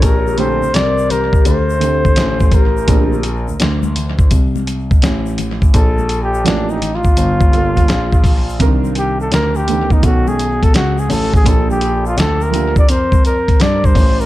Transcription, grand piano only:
0.02 A#1
0.62 C2
0.74 C2
1.45 D2
2.17 A1
2.88 A#1
3.48 D2
3.60 D2
4.31 C2
5.03 A1
5.74 A#1
6.46 A1
7.05 G1
7.17 G1
7.88 A#1
8.60 C2
9.32 D2
9.90 B1
10.03 B1
10.74 C#2
11.09 A1
11.46 A#1
12.17 D2
12.76 F2
12.89 F2
13.60 G2
13.95 A1

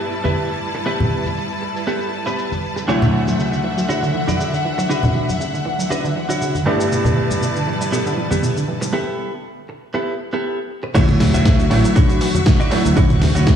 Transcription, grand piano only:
Already playing: G2 A3 B3 D4 E4
2.87 D2 F#3 A3 E4
6.66 G2 A3 B3 D4 E4
10.94 F#3 A3 E4 C#5
11.70 F#3 A3 E4 C#5
12.71 F#3 A3 E4

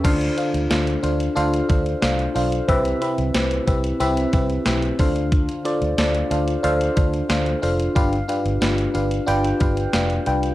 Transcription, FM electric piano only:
0.04 D3 D4 F4 A4 C5 F5
0.37 D4 F4 A4 C5 F5
0.70 D4 F4 A4 C5 F5
1.03 D4 F4 A4 C5 F5
1.36 D4 F4 A4 C5 F5
1.69 D4 F4 A4 C5 F5
2.02 D4 F4 A4 C5 F5
2.35 D4 F4 A4 C5 F5
2.68 C3 C4 E4 G4 B4 E5
3.01 C4 E4 G4 B4 E5
3.34 C4 E4 G4 B4 E5
3.67 C4 E4 G4 B4 E5
4.00 C4 E4 G4 B4 E5
4.33 C4 E4 G4 B4 E5
4.66 C4 E4 G4 B4 E5
4.99 D3 D4 F4 A4 C5 F5
5.65 D4 F4 A4 C5 D5
5.98 D4 F4 A4 C5 D5
6.31 D4 F4 A4 C5 F5
6.63 D4 F4 A4 C5 F5
6.96 D4 F4 A4 C5 F5
7.29 D4 F4 A4 C5 F5
7.62 D4 F4 A4 C5 F5
7.95 G2 D4 F4 G4 B4 F5
8.28 D4 F4 G4 B4 F5
8.61 D4 F4 G4 B4 F5
8.94 D4 F4 G4 B4 F5
9.26 D4 F4 G4 B4 G5
9.60 D4 F4 G4 B4 F5
9.93 D4 F4 G4 B4 F5
10.26 D4 F4 G4 B4 G5

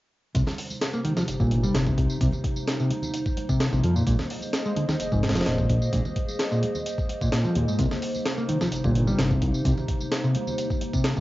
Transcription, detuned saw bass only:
0.35 C2
1.28 G1
1.40 G1
1.74 G1
1.98 C2
2.21 C2
3.73 A#1
3.84 F2
4.07 A#1
5.00 F1
5.12 F1
5.46 F1
5.69 A#1
5.93 A#1
7.56 D#2
7.79 C2
8.72 G1
8.84 G1
9.19 G1
9.42 C2
9.65 C2
11.17 A#1

